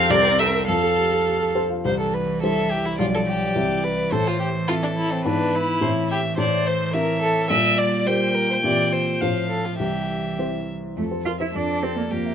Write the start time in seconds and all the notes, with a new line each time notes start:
Already playing: F2 C4 G4 A4 F5
0.10 C2 A#4 D5
0.24 A#4
0.40 A4 E5
0.54 A#4
0.68 F2 A4 F5
0.83 A4
0.97 G4
1.11 A4
1.26 G4
1.41 A4
1.55 C5
1.70 F4
1.85 C2 E3 C5
2.00 A4
2.14 B4
2.42 G3 E4 A4 C5 E5
2.71 G4
2.86 E4
2.99 B1 F3 G3 F4 D5
3.14 A4
3.27 G4
3.55 C2 E3 C4 E4 E5
3.84 B4
4.11 A2 A4 C5
4.27 F4
4.40 G4
4.68 C4 E4 F4 A4 E5
4.83 D4
4.97 E4
5.12 C4
5.25 G#2 B3 D4 E4 B4 E5
5.55 E4
5.81 A2 E3 C4 E4 C5 E5
6.10 G4 E5
6.38 A2 C5 D5
6.67 C5
6.93 C4 E4 A#4 E5
7.22 A4
7.50 A#2 G3 D5 E5
7.78 D5
8.06 A#3 G4 C5 D5 G5
8.35 A#4
8.51 C5
8.63 A#2 E3 C4 G4 D5 E5
8.92 C5
9.21 A2 F3 C4 F4 C5 F5
9.50 A4
9.65 F4
9.79 C2 E3 G4 E5
10.38 C4 E4 C5
10.97 F2 A3 A4
11.11 C5
11.25 F4 A#4 F5
11.40 E4 C5 E5
11.54 F2 D4 A4 D5
11.69 D5
11.83 C4 C5
11.97 A#3 A#4 D5
12.11 F2 A#3 G4 A#4
12.26 E5